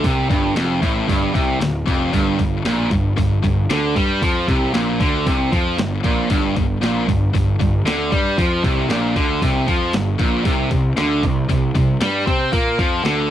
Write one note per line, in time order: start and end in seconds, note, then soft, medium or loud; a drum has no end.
0.04 0.28 C2 medium
0.04 0.29 C3 loud
0.04 kick loud
0.04 open hi-hat medium
0.29 0.54 G1 medium
0.29 0.55 G2 loud
0.29 kick loud
0.29 open hi-hat medium
0.56 0.81 F1 medium
0.56 0.81 F2 loud
0.56 snare loud
0.56 open hi-hat medium
0.82 1.07 A1 medium
0.82 1.07 A2 medium
0.82 kick medium
0.82 open hi-hat medium
1.08 1.33 G1 medium
1.08 1.33 G2 medium
1.08 kick loud
1.08 open hi-hat medium
1.33 1.59 C2 medium
1.33 1.59 C3 loud
1.33 kick loud
1.33 open hi-hat medium
1.60 1.85 D1 medium
1.60 1.81 D2 medium
1.60 snare loud
1.60 open hi-hat medium
1.86 2.11 F1 medium
1.86 2.12 F2 loud
1.86 kick medium
1.86 open hi-hat medium
2.13 2.37 G1 loud
2.13 2.38 G2 medium
2.13 kick loud
2.13 open hi-hat medium
2.39 2.63 G1 medium
2.39 2.60 G2 medium
2.39 kick medium
2.39 open hi-hat medium
2.65 2.89 A#1 medium
2.65 2.90 A#2 loud
2.65 snare medium
2.65 open hi-hat medium
2.91 3.16 G1 medium
2.91 3.12 G2 medium
2.91 kick medium
2.91 open hi-hat medium
3.17 3.42 G1 medium
3.17 3.38 G2 medium
3.17 kick medium
3.17 open hi-hat medium
3.43 3.68 G1 medium
3.43 3.64 G2 medium
3.43 kick medium
3.43 open hi-hat medium
3.69 3.94 D2 medium
3.69 3.95 D3 loud
3.69 snare loud
3.69 open hi-hat medium
3.96 4.20 G2 medium
3.96 4.21 G3 loud
3.96 kick medium
3.96 open hi-hat medium
4.22 4.46 F2 medium
4.22 4.47 F3 medium
4.22 kick loud
4.22 open hi-hat medium
4.47 4.72 C2 medium
4.47 4.73 C3 loud
4.47 kick loud
4.47 open hi-hat medium
4.73 4.98 A#1 medium
4.73 4.99 A#2 loud
4.73 snare loud
4.73 open hi-hat medium
4.99 5.24 D2 medium
4.99 5.25 D3 medium
4.99 kick loud
4.99 open hi-hat medium
5.26 5.50 C2 medium
5.26 5.51 C3 medium
5.26 kick loud
5.26 open hi-hat medium
5.51 5.76 F2 medium
5.51 5.77 F3 medium
5.51 kick loud
5.51 open hi-hat medium
5.77 6.02 G1 medium
5.77 5.98 G2 medium
5.77 snare loud
5.77 open hi-hat medium
6.04 6.28 A#1 medium
6.04 6.29 A#2 loud
6.04 kick loud
6.04 open hi-hat medium
6.30 6.54 G1 medium
6.30 6.55 G2 loud
6.30 kick loud
6.30 open hi-hat medium
6.56 6.80 G1 medium
6.56 6.77 G2 medium
6.56 kick medium
6.56 open hi-hat medium
6.82 7.06 A#1 loud
6.82 7.07 A#2 medium
6.82 snare medium
6.82 open hi-hat medium
7.08 7.32 G1 medium
7.08 7.29 G2 medium
7.08 kick medium
7.08 open hi-hat medium
7.34 7.58 G1 medium
7.34 7.55 G2 medium
7.34 kick medium
7.34 open hi-hat medium
7.60 7.84 G1 medium
7.60 7.81 G2 medium
7.60 kick medium
7.60 open hi-hat medium
7.85 8.10 D2 medium
7.85 8.11 D3 loud
7.85 snare loud
7.85 open hi-hat medium
8.11 8.36 G2 medium
8.11 8.36 G3 loud
8.11 kick loud
8.11 open hi-hat soft
8.37 8.62 F2 medium
8.37 8.63 F3 loud
8.37 kick loud
8.37 open hi-hat medium
8.63 8.88 C2 medium
8.63 8.89 C3 loud
8.63 kick medium
8.63 open hi-hat medium
8.89 9.14 A#1 loud
8.89 9.15 A#2 medium
8.89 snare loud
8.89 open hi-hat medium
9.15 9.40 D2 medium
9.15 9.41 D3 medium
9.15 kick loud
9.15 open hi-hat medium
9.41 9.66 C2 medium
9.41 9.67 C3 loud
9.41 kick loud
9.41 open hi-hat medium
9.67 9.92 F2 medium
9.67 9.92 F3 medium
9.67 kick loud
9.67 open hi-hat medium
9.93 10.18 G1 medium
9.93 10.14 G2 medium
9.93 snare loud
9.93 open hi-hat medium
10.18 10.44 A#1 medium
10.18 10.44 A#2 loud
10.18 kick loud
10.18 open hi-hat medium
10.45 10.70 C2 medium
10.45 10.69 C3 loud
10.45 kick loud
10.45 open hi-hat medium
10.71 10.95 C2 medium
10.71 10.92 C3 medium
10.71 kick medium
10.71 open hi-hat medium
10.97 11.21 D2 loud
10.97 11.22 D3 loud
10.97 snare medium
10.97 open hi-hat medium
11.22 11.47 C2 medium
11.22 11.44 C3 medium
11.22 kick medium
11.22 open hi-hat medium
11.49 11.73 C2 medium
11.49 11.70 C3 medium
11.49 kick medium
11.49 open hi-hat medium
11.75 11.99 C2 medium
11.75 11.96 C3 medium
11.75 kick loud
11.75 open hi-hat medium
12.01 12.25 G2 loud
12.01 12.26 G3 loud
12.01 snare loud
12.01 open hi-hat medium
12.27 12.51 C3 medium
12.27 12.52 C4 loud
12.27 kick loud
12.27 open hi-hat soft
12.53 12.77 A#2 medium
12.53 12.78 A#3 medium
12.53 kick loud
12.53 open hi-hat medium
12.79 13.03 F2 medium
12.79 13.04 F3 loud
12.79 kick loud
12.79 open hi-hat medium
13.04 13.28 D2 medium
13.04 13.30 D3 medium
13.04 snare medium
13.04 open hi-hat medium